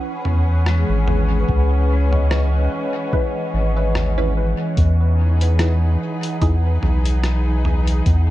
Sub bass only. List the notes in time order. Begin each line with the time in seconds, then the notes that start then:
0.26 E2
0.89 G#1
1.49 C#2
3.54 G#1
4.77 E2
6.42 E2
6.83 B1
8.06 E2